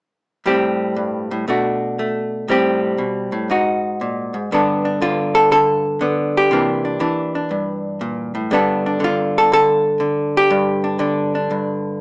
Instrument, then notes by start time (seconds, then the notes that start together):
hollow-body jazz guitar
0.46 A2 G3 C4 G4
0.96 G2
1.31 A2
1.48 B2 A3 D4 F#4
1.99 A3
2.48 A2 G3 C4 G4
2.98 B2
3.32 A2
3.50 G#2 D#4 F#4
4.01 A#2
4.34 G#2
4.52 G2 D3 B3 D4 A4
4.85 D4
5.02 D3 F4
5.35 A4
5.51 D3 A4
6.01 D3 B3
6.37 G4
6.51 C3 E3 A#3 D4
6.85 D4
7.00 E3 D4
7.35 D4
7.51 G2
8.01 A#2
8.35 A2
8.51 G2 D3 B3 D4 A4
8.86 D4
9.00 D3
9.04 F4
9.38 A4
9.52 D3 A4
10.00 D3
10.37 G4
10.51 G2
10.84 D4
10.99 D3 D4
11.35 D4
11.51 G2